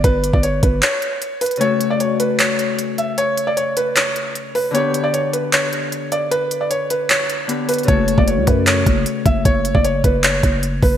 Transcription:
<<
  \new Staff \with { instrumentName = "Felt piano" } { \time 4/4 \key fis \phrygian \tempo 4 = 153 b'8. d''16 cis''8 b'8 cis''4. b'8 | cis''8. d''16 cis''8 b'8 cis''4. e''8 | cis''8. d''16 cis''8 b'8 cis''4. b'8 | cis''8. d''16 cis''8 b'8 cis''4. d''8 |
b'8. d''16 cis''8 b'8 cis''4. b'8 | cis''8. d''16 cis''8 b'8 cis''4. e''8 | cis''8. d''16 cis''8 b'8 cis''4. b'8 | }
  \new Staff \with { instrumentName = "Harp" } { \time 4/4 \key fis \phrygian r1 | <cis a fis' a'>1~ | <cis a fis' a'>1 | <d b g' b'>1~ |
<d b g' b'>2. <d b g' b'>4 | <cis a fis' a'>1~ | <cis a fis' a'>1 | }
  \new Staff \with { instrumentName = "808-style bass" } { \clef bass \time 4/4 \key fis \phrygian g,,8. g,,8. g,,8 r2 | r1 | r1 | r1 |
r1 | fis,,8. fis,,8 cis,16 fis,4 fis,,8 r8 fis,,8 | fis,,8. fis,,8. fis,,4 fis,,4 fis,,8 | }
  \new DrumStaff \with { instrumentName = "Drums" } \drummode { \time 4/4 <hh bd>8 hh16 bd16 hh8 <hh bd>8 <hc hh>8 hh8 hh8 <hh hho>32 hh32 hh32 hh32 | hh8 hh8 hh8 hh8 <hc hh>8 hh8 hh8 hh8 | hh8 hh8 hh8 hh8 <hc hh>8 hh8 hh8 hho8 | hh8 hh8 hh8 hh8 <hc hh>8 hh8 hh8 hh8 |
hh8 hh8 hh8 hh8 <hc hh>8 hh8 hh8 <hh hho>32 hh32 hh32 hh32 | <hh bd>8 hh16 bd16 hh8 <hh bd>8 <hc hh>8 <hh bd>8 hh8 <hh bd>8 | <hh bd>8 hh16 bd16 hh8 <hh bd>8 <hc hh>8 <hh bd>8 hh8 <hho bd>8 | }
>>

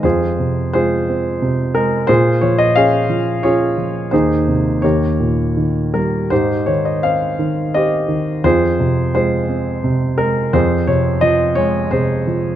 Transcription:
<<
  \new Staff \with { instrumentName = "Grand piano" } { \time 3/4 \key f \minor \tempo 4 = 86 << { c''4 c''4. bes'8 | c''8 des''16 ees''16 f''4 des''4 | c''4 des''4. bes'8 | c''8 des''16 ees''16 f''4 ees''4 |
c''4 c''4. bes'8 | c''8 des''8 ees''8 des''8 c''4 | } \\ { <f' aes'>4 <f' aes'>4. r8 | <f' aes'>4 <aes' des''>4 <f' aes'>4 | <ees' aes'>4 <g' bes'>4. r8 | <ees' g'>4 c''4 <g' c''>4 |
<f' aes'>4 <f' aes'>4. r8 | aes'4. r8 aes'4 | } >> }
  \new Staff \with { instrumentName = "Grand piano" } { \clef bass \time 3/4 \key f \minor f,8 c8 aes8 c'8 c8 aes8 | bes,8 f8 des'8 f8 des'8 f8 | ees,8 c8 ees,8 bes,8 ees8 g8 | aes,8 ees8 c'8 ees8 c'8 ees8 |
f,8 c8 aes8 c'8 c8 aes8 | f,8 c8 f8 aes8 c8 f8 | }
>>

